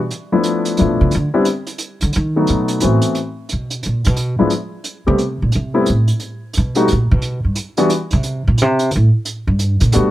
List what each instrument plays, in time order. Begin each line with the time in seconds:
0.11 closed hi-hat
0.32 grand piano F3 A3 B3 D4 E4
0.43 closed hi-hat
0.65 closed hi-hat
0.77 upright bass B2, grand piano F3 A3 B3 D4 E4, closed hi-hat
1.01 upright bass C3
1.11 upright bass D3, closed hi-hat
1.34 grand piano G3 B3 C4 D4 E4
1.45 closed hi-hat
1.67 closed hi-hat
1.78 closed hi-hat
2.01 upright bass D3, closed hi-hat
2.13 upright bass D#3, closed hi-hat
2.36 grand piano F#3 A3 B3 D#4 F#4
2.47 upright bass B2, closed hi-hat
2.68 closed hi-hat
2.80 upright bass A2, grand piano E3 A3 B3 C4 F#4, closed hi-hat
3.02 closed hi-hat
3.15 closed hi-hat
3.49 upright bass B2, closed hi-hat
3.70 closed hi-hat
3.83 upright bass A#2, closed hi-hat
4.04 upright bass B2, closed hi-hat
4.16 closed hi-hat
4.39 upright bass G#2, grand piano F3 G#3 B3 D4 E4
4.50 closed hi-hat
4.84 closed hi-hat
5.07 upright bass C3, grand piano G3 A3 B3 C4 G4
5.18 closed hi-hat
5.42 upright bass A#2
5.52 upright bass C3, closed hi-hat
5.74 grand piano G3 A3 B3 C4 E4
5.86 upright bass A2, closed hi-hat
6.08 closed hi-hat
6.20 closed hi-hat
6.53 closed hi-hat
6.57 upright bass B2
6.75 grand piano G3 A3 B3 D#4 F#4, closed hi-hat
6.88 closed hi-hat
6.92 upright bass A#2
7.11 upright bass B2
7.22 closed hi-hat
7.45 upright bass G2
7.55 closed hi-hat
7.77 grand piano E3 G3 B3 D4 F#4, closed hi-hat
7.90 closed hi-hat
8.11 upright bass C3, closed hi-hat
8.23 closed hi-hat
8.48 upright bass A#2
8.58 upright bass C3, closed hi-hat
8.79 closed hi-hat
8.91 closed hi-hat
8.96 upright bass A2
9.25 closed hi-hat
9.47 upright bass G2
9.59 closed hi-hat
9.80 upright bass A#2, closed hi-hat
9.92 upright bass B2, grand piano G3 A3 B3 D4 F#4, closed hi-hat